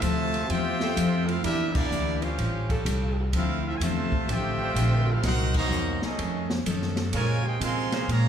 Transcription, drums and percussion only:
0.02 hi-hat pedal medium
0.02 ride medium
0.34 ride medium
0.50 ride medium
0.80 snare medium
0.97 hi-hat pedal medium
0.97 ride medium
1.28 ride medium
1.44 ride medium
1.75 kick loud
1.75 crash medium
1.92 hi-hat pedal medium
2.22 ride medium
2.38 ride medium
2.70 kick medium
2.70 ride medium
2.86 hi-hat pedal medium
2.86 ride medium
3.33 ride medium
3.81 hi-hat pedal medium
3.81 ride medium
4.12 kick medium
4.29 ride medium
4.76 hi-hat pedal medium
4.76 ride medium
5.23 snare soft
5.23 ride medium
5.54 kick loud
5.54 crash medium
5.71 hi-hat pedal medium
6.02 snare soft
6.19 ride medium
6.50 snare medium
6.66 hi-hat pedal medium
6.66 ride medium
6.82 snare soft
6.96 snare medium
6.96 ride medium
7.13 ride medium
7.61 hi-hat pedal medium
7.61 ride medium
7.92 snare medium
7.92 ride medium
8.09 ride medium

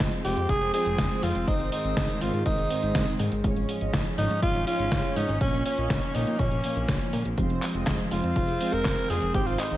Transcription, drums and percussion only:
0.00 snare loud
0.00 closed hi-hat medium
0.12 closed hi-hat soft
0.25 open hi-hat medium
0.37 closed hi-hat soft
0.49 kick loud
0.49 closed hi-hat medium
0.62 closed hi-hat soft
0.74 open hi-hat loud
0.86 closed hi-hat soft
0.98 kick loud
0.98 snare loud
0.98 closed hi-hat medium
1.11 closed hi-hat soft
1.23 open hi-hat medium
1.35 closed hi-hat soft
1.48 kick loud
1.48 closed hi-hat medium
1.60 closed hi-hat soft
1.72 open hi-hat loud
1.85 closed hi-hat soft
1.97 kick loud
1.97 snare loud
1.97 closed hi-hat medium
2.09 closed hi-hat soft
2.21 open hi-hat medium
2.33 closed hi-hat soft
2.46 kick loud
2.46 closed hi-hat medium
2.58 closed hi-hat soft
2.70 open hi-hat loud
2.83 closed hi-hat soft
2.95 kick loud
2.95 snare loud
2.95 closed hi-hat medium
3.07 closed hi-hat soft
3.19 open hi-hat medium
3.32 closed hi-hat soft
3.44 kick loud
3.44 closed hi-hat medium
3.56 closed hi-hat soft
3.69 open hi-hat loud
3.81 closed hi-hat soft
3.93 kick loud
3.93 snare loud
3.93 closed hi-hat medium
4.06 closed hi-hat soft
4.18 open hi-hat medium
4.30 closed hi-hat soft
4.42 kick loud
4.42 closed hi-hat medium
4.55 closed hi-hat soft
4.67 open hi-hat medium
4.79 closed hi-hat soft
4.92 kick loud
4.92 snare loud
4.92 closed hi-hat medium
5.04 closed hi-hat soft
5.16 open hi-hat medium
5.29 closed hi-hat soft
5.41 kick loud
5.41 closed hi-hat medium
5.53 closed hi-hat soft
5.66 open hi-hat loud
5.78 closed hi-hat soft
5.90 kick loud
5.90 snare loud
5.90 closed hi-hat medium
6.02 closed hi-hat soft
6.15 open hi-hat medium
6.27 closed hi-hat soft
6.39 kick loud
6.39 closed hi-hat medium
6.52 closed hi-hat soft
6.64 open hi-hat loud
6.76 closed hi-hat soft
6.88 kick loud
6.88 snare loud
6.88 closed hi-hat medium
7.01 closed hi-hat soft
7.13 open hi-hat medium
7.25 closed hi-hat soft
7.38 kick loud
7.38 closed hi-hat medium
7.50 closed hi-hat soft
7.62 clap medium
7.62 open hi-hat loud
7.74 closed hi-hat soft
7.87 kick loud
7.87 snare loud
7.87 clap medium
7.87 closed hi-hat medium
7.99 closed hi-hat soft
8.11 open hi-hat medium
8.24 closed hi-hat soft
8.36 kick loud
8.36 closed hi-hat medium
8.48 closed hi-hat soft
8.61 open hi-hat loud
8.73 closed hi-hat soft
8.85 kick loud
8.85 snare loud
8.85 clap medium
8.85 closed hi-hat medium
8.98 closed hi-hat soft
9.10 open hi-hat medium
9.22 closed hi-hat soft
9.34 kick loud
9.34 closed hi-hat medium
9.47 closed hi-hat soft
9.59 clap medium
9.59 open hi-hat loud
9.71 closed hi-hat soft

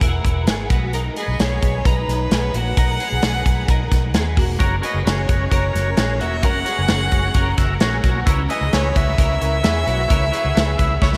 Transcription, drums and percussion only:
0.01 kick loud
0.01 closed hi-hat medium
0.25 kick medium
0.25 closed hi-hat medium
0.47 snare loud
0.47 closed hi-hat medium
0.70 kick loud
0.70 closed hi-hat medium
0.93 closed hi-hat medium
1.16 closed hi-hat medium
1.40 snare loud
1.40 closed hi-hat medium
1.63 kick medium
1.63 closed hi-hat medium
1.85 kick loud
1.85 closed hi-hat medium
2.09 snare soft
2.09 closed hi-hat medium
2.31 snare loud
2.31 closed hi-hat medium
2.54 closed hi-hat medium
2.77 kick loud
2.77 closed hi-hat medium
3.00 closed hi-hat medium
3.22 snare loud
3.22 closed hi-hat medium
3.46 kick medium
3.46 closed hi-hat medium
3.68 kick loud
3.68 closed hi-hat medium
3.92 kick medium
3.92 snare soft
3.92 closed hi-hat medium
4.14 snare loud
4.14 closed hi-hat medium
4.37 kick medium
4.37 open hi-hat medium
4.60 kick loud
4.60 closed hi-hat medium
4.83 closed hi-hat medium
5.07 snare loud
5.07 closed hi-hat medium
5.29 kick medium
5.29 closed hi-hat medium
5.51 kick medium
5.51 closed hi-hat medium
5.75 snare soft
5.75 closed hi-hat medium
5.97 snare loud
5.97 closed hi-hat medium
6.21 closed hi-hat medium
6.43 kick loud
6.43 closed hi-hat medium
6.66 closed hi-hat medium
6.88 snare loud
6.88 closed hi-hat medium
7.12 kick medium
7.12 closed hi-hat medium
7.34 kick loud
7.34 closed hi-hat medium
7.58 kick medium
7.58 snare soft
7.58 closed hi-hat medium
7.80 snare loud
7.80 closed hi-hat medium
8.04 kick medium
8.04 closed hi-hat medium
8.27 kick loud
8.27 closed hi-hat loud
8.50 closed hi-hat medium
8.73 snare loud
8.73 closed hi-hat medium
8.96 kick medium
8.96 closed hi-hat medium
9.18 kick loud
9.18 closed hi-hat medium
9.41 closed hi-hat medium
9.64 snare loud
9.64 closed hi-hat medium
9.88 closed hi-hat medium
10.10 kick medium
10.10 closed hi-hat medium
10.33 closed hi-hat medium
10.57 snare loud
10.57 closed hi-hat medium
10.79 kick medium
10.79 closed hi-hat medium
11.02 kick loud
11.02 snare medium
11.13 snare soft

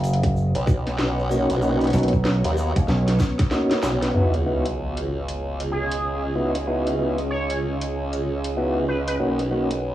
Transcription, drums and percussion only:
0.04 closed hi-hat soft
0.04 shaker medium
0.13 closed hi-hat soft
0.23 kick medium
0.23 closed hi-hat medium
0.23 shaker soft
0.36 shaker soft
0.55 closed hi-hat soft
0.55 shaker soft
0.67 kick loud
0.67 shaker medium
0.86 snare medium
0.86 closed hi-hat medium
0.86 shaker soft
0.98 snare loud
0.98 shaker soft
1.19 shaker soft
1.31 shaker medium
1.50 closed hi-hat medium
1.50 shaker soft
1.62 shaker soft
1.80 closed hi-hat soft
1.80 shaker soft
1.84 closed hi-hat soft
1.87 closed hi-hat soft
1.90 snare soft
1.90 closed hi-hat soft
1.93 closed hi-hat soft
1.93 shaker medium
1.98 closed hi-hat soft
2.03 closed hi-hat soft
2.08 closed hi-hat soft
2.13 kick medium
2.13 shaker soft
2.25 snare loud
2.25 shaker medium
2.44 closed hi-hat medium
2.44 shaker soft
2.57 shaker medium
2.76 kick medium
2.76 closed hi-hat medium
2.76 shaker soft
2.88 snare medium
2.88 shaker soft
3.07 snare medium
3.07 closed hi-hat medium
3.07 shaker soft
3.19 kick medium
3.19 snare medium
3.19 shaker medium
3.39 kick loud
3.39 snare medium
3.39 closed hi-hat medium
3.39 shaker soft
3.51 snare medium
3.51 shaker soft
3.71 snare medium
3.71 closed hi-hat soft
3.71 shaker soft
3.83 snare loud
3.83 shaker medium
4.03 snare medium
4.03 closed hi-hat medium
4.03 shaker soft
4.34 closed hi-hat soft
4.66 closed hi-hat medium
4.97 closed hi-hat medium
5.29 closed hi-hat medium
5.60 closed hi-hat soft
5.92 closed hi-hat medium
6.55 closed hi-hat medium
6.87 closed hi-hat soft
7.18 closed hi-hat medium
7.50 closed hi-hat medium
7.81 closed hi-hat medium
8.13 closed hi-hat medium
8.44 closed hi-hat medium
9.08 closed hi-hat medium
9.39 closed hi-hat soft
9.71 closed hi-hat medium

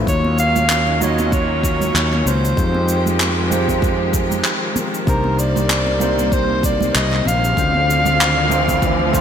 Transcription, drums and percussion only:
0.07 kick loud
0.07 cabasa medium
0.24 high conga medium
0.38 cabasa medium
0.56 low conga medium
0.56 cabasa medium
0.70 clap medium
0.70 high conga medium
0.70 cabasa medium
0.87 muted conga medium
1.01 low conga medium
1.01 cabasa medium
1.18 high conga medium
1.18 cabasa medium
1.32 kick loud
1.32 cabasa soft
1.63 kick medium
1.63 cabasa medium
1.81 high conga medium
1.81 low conga medium
1.81 cabasa medium
1.96 clap medium
1.96 cabasa medium
2.12 clap soft
2.12 muted conga medium
2.26 high conga medium
2.26 cabasa medium
2.45 cabasa medium
2.57 kick loud
2.57 cabasa medium
2.74 high conga medium
2.88 cabasa medium
3.06 low conga medium
3.06 cabasa medium
3.20 clap medium
3.20 high conga medium
3.20 cabasa soft
3.51 low conga medium
3.51 cabasa medium
3.68 kick medium
3.68 high conga medium
3.68 cabasa medium
3.82 kick loud
3.82 cabasa soft
4.13 kick medium
4.13 cabasa medium
4.30 high conga medium
4.30 low conga medium
4.30 cabasa medium
4.45 clap medium
4.45 cabasa soft
4.76 muted conga medium
4.76 high conga medium
4.76 cabasa medium
4.94 cabasa soft
5.07 kick loud
5.07 cabasa soft
5.24 high conga medium
5.39 cabasa medium
5.56 low conga medium
5.56 cabasa medium
5.69 clap loud
5.69 high conga medium
5.69 cabasa soft
5.87 muted conga medium
6.00 low conga medium
6.00 cabasa medium
6.18 high conga medium
6.18 cabasa medium
6.32 kick loud
6.32 cabasa soft
6.63 kick medium
6.63 cabasa medium
6.81 high conga medium
6.81 low conga medium
6.81 cabasa medium
6.95 clap medium
6.95 cabasa soft
7.11 clap soft
7.11 muted conga medium
7.25 high conga medium
7.25 cabasa medium
7.44 cabasa medium
7.57 kick loud
7.57 cabasa soft
7.74 high conga medium
7.90 cabasa medium
8.05 low conga medium
8.05 cabasa medium
8.20 clap loud
8.20 high conga medium
8.20 cabasa soft
8.50 low conga medium
8.50 cabasa medium
8.68 kick medium
8.68 high conga medium
8.68 cabasa medium
8.82 kick loud
8.82 cabasa soft
8.99 muted conga soft
9.13 kick medium
9.13 cabasa medium

